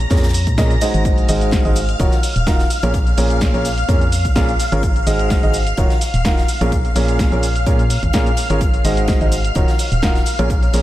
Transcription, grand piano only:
0.11 0.24 A#2 medium
0.11 0.24 C#4 medium
0.11 0.24 F4 medium
0.11 0.24 G#4 medium
0.11 0.24 A#4 medium
0.11 0.24 C#5 medium
0.58 0.71 A#2 medium
0.58 0.71 C#4 medium
0.58 0.71 F4 medium
0.58 0.71 G#4 medium
0.58 0.71 A#4 medium
0.58 0.71 D#5 loud
0.81 1.26 G#3 medium
0.81 1.26 D#4 medium
0.81 1.26 F#4 medium
0.81 1.26 G#4 medium
0.81 1.26 C5 medium
0.81 1.26 D#5 medium
1.29 1.62 G#3 medium
1.29 1.62 D#4 medium
1.29 1.62 F#4 medium
1.29 1.62 G#4 medium
1.29 1.62 C5 medium
1.29 1.62 D#5 loud
1.65 1.76 G#3 medium
1.65 1.76 D#4 medium
1.65 1.76 F#4 medium
1.65 1.76 G#4 medium
1.65 1.76 C5 medium
1.65 1.76 D#5 medium
2.00 2.13 D#3 medium
2.00 2.13 D#4 medium
2.00 2.13 F4 medium
2.00 2.13 F#4 medium
2.00 2.13 A#4 medium
2.00 2.13 C#5 loud
2.47 2.60 D#4 medium
2.47 2.60 F4 medium
2.47 2.60 F#4 medium
2.47 2.60 A#4 medium
2.47 2.60 F5 medium
2.83 2.95 A#2 medium
2.83 2.95 C#4 medium
2.83 2.95 F4 medium
2.83 2.95 G#4 medium
2.83 2.95 A#4 medium
2.83 2.95 C#5 loud
3.18 3.51 A#2 medium
3.18 3.51 C#4 medium
3.18 3.51 F4 medium
3.18 3.51 G#4 medium
3.18 3.51 A#4 medium
3.18 3.51 C#5 loud
3.54 3.65 A#2 medium
3.54 3.65 C#4 medium
3.54 3.65 F4 medium
3.54 3.65 G#4 medium
3.54 3.65 A#4 medium
3.54 3.65 C#5 medium
3.89 4.02 A#2 medium
3.89 4.02 C#4 medium
3.89 4.02 F4 medium
3.89 4.02 G#4 medium
3.89 4.02 A#4 medium
3.89 4.02 C#5 loud
4.36 4.49 A#2 medium
4.36 4.49 C#4 medium
4.36 4.49 F4 medium
4.36 4.49 G#4 medium
4.36 4.49 A#4 medium
4.36 4.49 F5 loud
4.72 4.82 C#4 medium
4.72 4.82 F4 medium
4.72 4.82 G#4 medium
4.72 4.82 A#4 medium
4.72 4.82 C#5 loud
5.07 5.40 G#3 medium
5.07 5.40 D#4 medium
5.07 5.40 F#4 medium
5.07 5.40 G#4 medium
5.07 5.40 C5 medium
5.07 5.40 D#5 loud
5.43 5.54 G#3 medium
5.43 5.54 D#4 medium
5.43 5.54 F#4 medium
5.43 5.54 G#4 medium
5.43 5.54 C5 medium
5.43 5.54 D#5 medium
5.78 5.91 D#3 medium
5.78 5.91 D#4 medium
5.78 5.91 F4 medium
5.78 5.91 F#4 medium
5.78 5.91 A#4 medium
5.78 5.91 C#5 loud
6.25 6.38 D#4 medium
6.25 6.38 F4 medium
6.25 6.38 F#4 medium
6.25 6.38 A#4 medium
6.25 6.38 F5 loud
6.61 6.73 A#2 medium
6.61 6.73 C#4 medium
6.61 6.73 F4 medium
6.61 6.73 G#4 medium
6.61 6.73 A#4 medium
6.61 6.73 C#5 loud
6.96 7.29 A#2 medium
6.96 7.29 C#4 medium
6.96 7.29 F4 medium
6.96 7.29 G#4 medium
6.96 7.29 A#4 medium
6.96 7.29 C#5 loud
7.32 7.43 A#2 medium
7.32 7.43 C#4 medium
7.32 7.43 F4 medium
7.32 7.43 G#4 medium
7.32 7.43 A#4 medium
7.32 7.43 C#5 medium
7.66 7.80 A#2 medium
7.66 7.80 C#4 medium
7.66 7.80 F4 medium
7.66 7.80 G#4 medium
7.66 7.80 A#4 medium
7.66 7.80 C#5 loud
8.14 8.27 A#2 medium
8.14 8.27 C#4 medium
8.14 8.27 F4 medium
8.14 8.27 G#4 medium
8.14 8.27 A#4 medium
8.14 8.27 F5 loud
8.50 8.60 C#4 medium
8.50 8.60 F4 medium
8.50 8.60 G#4 medium
8.50 8.60 A#4 medium
8.50 8.60 C#5 loud
8.85 9.18 G#3 medium
8.85 9.18 D#4 medium
8.85 9.18 F#4 medium
8.85 9.18 G#4 medium
8.85 9.18 C5 medium
8.85 9.18 D#5 loud
9.21 9.32 G#3 medium
9.21 9.32 D#4 medium
9.21 9.32 F#4 medium
9.21 9.32 G#4 medium
9.21 9.32 C5 medium
9.21 9.32 D#5 medium
9.55 9.69 D#3 medium
9.55 9.69 D#4 medium
9.55 9.69 F4 medium
9.55 9.69 F#4 medium
9.55 9.69 A#4 medium
9.55 9.69 C#5 loud
10.03 10.16 D#4 medium
10.03 10.16 F4 medium
10.03 10.16 F#4 medium
10.03 10.16 A#4 medium
10.03 10.16 F5 loud
10.39 10.50 A#2 medium
10.39 10.50 C#4 medium
10.39 10.50 F4 medium
10.39 10.50 G#4 medium
10.39 10.50 A#4 medium
10.39 10.50 C#5 loud
10.74 10.82 A#2 medium
10.74 10.82 C#4 medium
10.74 10.82 F4 medium
10.74 10.82 G#4 medium
10.74 10.82 A#4 medium
10.74 10.82 C#5 loud

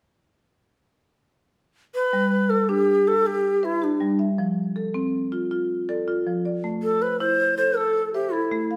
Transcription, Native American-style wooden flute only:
1.95 2.51 B4 loud
2.50 2.71 A4 medium
2.69 3.09 G4 medium
3.08 3.28 A4 medium
3.27 3.67 G4 medium
3.65 3.85 E4 medium
3.84 4.25 D4 medium
6.83 7.04 A4 medium
7.02 7.19 B4 medium
7.20 7.55 C5 medium
7.57 7.78 C5 medium
7.77 8.13 A4 medium
8.14 8.34 G4 medium
8.33 8.75 E4 medium

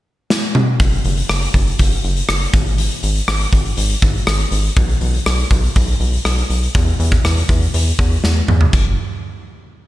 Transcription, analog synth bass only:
0.80 0.98 F#1 loud
1.05 1.23 F#1 medium
1.29 1.47 F#1 medium
1.54 1.72 F#1 medium
1.80 1.97 F#1 medium
2.04 2.22 F#1 loud
2.29 2.47 F#1 medium
2.54 2.89 G#1 medium
3.03 3.21 G#1 medium
3.28 3.46 G#1 loud
3.53 3.70 G#1 medium
3.77 3.95 G#1 loud
4.02 4.20 G#1 loud
4.27 4.45 G#1 medium
4.51 4.69 G#1 loud
4.76 4.94 B1 loud
5.01 5.19 B1 loud
5.26 5.44 B1 loud
5.51 5.69 B1 medium
5.76 5.94 B1 loud
6.00 6.18 B1 loud
6.25 6.43 B1 loud
6.50 6.68 B1 medium
6.75 6.93 E2 loud
6.99 7.17 E2 loud
7.24 7.42 E2 loud
7.49 7.67 E2 loud
7.74 7.92 E2 loud
7.99 8.17 E2 loud
8.24 8.42 E2 loud
8.48 8.66 E2 loud
8.73 8.96 F#1 loud

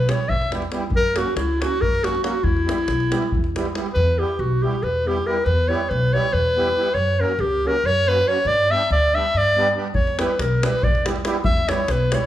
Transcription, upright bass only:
0.00 0.11 B1 medium
0.28 0.66 E2 medium
0.90 1.17 F#2 medium
1.36 1.63 C#2 medium
1.81 2.18 F#2 medium
2.44 2.70 E2 medium
2.88 3.15 B1 medium
3.34 3.71 E2 medium
3.96 4.22 E2 loud
4.39 4.66 B1 medium
4.83 5.20 E2 medium
5.46 5.72 E2 loud
5.91 6.17 B1 loud
6.33 6.70 E2 medium
6.95 7.21 F#2 medium
7.39 7.65 C#2 loud
7.84 8.21 F#2 medium
8.45 8.72 G2 medium
8.91 9.17 D2 loud
9.34 9.71 G2 medium
9.94 10.21 E2 medium
10.39 10.65 B1 medium
10.84 11.20 E2 medium
11.44 11.70 E2 loud
11.88 12.15 B1 loud

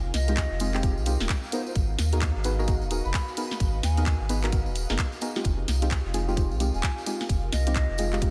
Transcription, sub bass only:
0.00 0.12 F1 loud
0.14 0.48 C2 medium
0.51 0.99 F1 medium
0.97 1.17 C2 medium
1.20 1.28 D#1 medium
1.75 1.96 G#1 loud
1.99 2.33 D#2 medium
2.36 2.84 G#1 medium
2.82 3.02 D#1 medium
3.05 3.13 F#1 medium
3.60 3.81 G#1 loud
3.83 4.18 D#2 medium
4.21 4.68 G#1 medium
4.67 4.86 D#1 medium
4.90 4.98 F#1 medium
5.45 5.66 F1 loud
5.68 6.02 C2 medium
6.05 6.53 F1 medium
6.51 6.71 C2 medium
6.75 6.82 D#1 medium
7.29 7.50 F1 loud
7.53 7.87 C2 medium
7.90 8.31 F1 medium

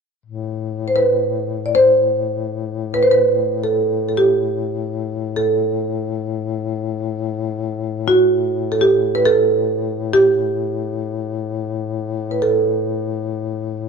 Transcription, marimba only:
0.88 0.97 C5 soft
0.96 1.68 B4 medium
1.66 1.75 D5 soft
1.75 2.97 C5 medium
2.94 3.03 B4 medium
3.03 3.11 C5 medium
3.11 3.65 B4 medium
3.64 4.07 A4 medium
4.09 4.16 A4 soft
4.17 5.40 G4 medium
5.36 7.30 A4 medium
8.08 8.76 F#4 medium
8.72 8.81 A4 medium
8.81 9.17 G4 medium
9.15 9.24 B4 medium
9.26 10.17 A4 medium
10.13 12.39 G4 medium
12.31 12.41 B4 soft
12.42 13.89 A4 medium

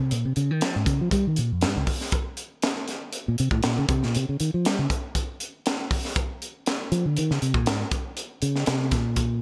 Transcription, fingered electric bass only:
0.00 0.11 C3 medium
0.12 0.24 A#2 medium
0.25 0.36 C3 medium
0.37 0.51 C#3 medium
0.51 0.63 D#3 medium
0.63 0.75 F3 medium
0.76 0.86 G#2 medium
0.86 0.99 C#3 medium
1.01 1.12 F3 medium
1.12 1.25 G3 medium
1.27 1.38 D#3 medium
1.38 1.50 A#2 medium
1.52 1.63 F2 medium
1.64 1.76 G2 medium
1.76 1.84 C#2 medium
3.28 3.39 A#2 medium
3.40 3.52 C3 medium
3.52 3.64 A2 medium
3.65 3.77 A#2 medium
3.78 3.89 C#3 loud
3.89 4.02 C3 medium
4.04 4.15 A#2 medium
4.16 4.28 C3 medium
4.29 4.40 C#3 medium
4.40 4.53 D#3 medium
4.54 4.67 F3 medium
4.67 4.78 G3 medium
4.79 4.86 C#3 medium
6.92 7.04 F3 loud
7.06 7.17 D3 medium
7.18 7.30 D#3 medium
7.31 7.42 C#3 medium
7.42 7.56 C3 medium
7.56 7.68 A#2 medium
7.68 7.83 G#2 medium
8.42 8.67 C#3 medium
8.68 8.91 C3 medium
8.92 9.42 A#2 medium

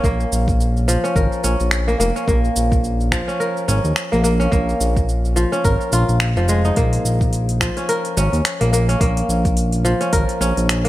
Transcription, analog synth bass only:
0.04 0.25 A#1 medium
0.32 0.97 A#1 medium
1.16 1.28 G#1 medium
1.44 1.56 A#1 medium
1.61 1.95 A#1 medium
2.00 2.12 F1 loud
2.28 2.50 A#1 loud
2.56 3.22 A#1 medium
3.68 3.80 G#1 loud
3.84 3.93 D#2 medium
4.13 4.48 A#1 medium
4.52 4.74 A#1 medium
4.80 5.46 A#1 medium
5.65 5.76 G#1 medium
5.92 6.04 A#1 medium
6.09 6.36 A#1 medium
6.37 6.72 F1 loud
6.77 6.99 A#1 loud
7.05 7.70 A#1 medium
8.17 8.29 G#1 loud
8.33 8.42 D#2 medium
8.61 8.96 A#1 medium
9.01 9.23 A#1 loud
9.29 9.94 A#1 medium
10.13 10.25 G#1 medium
10.41 10.53 A#1 medium
10.57 10.89 A#1 medium

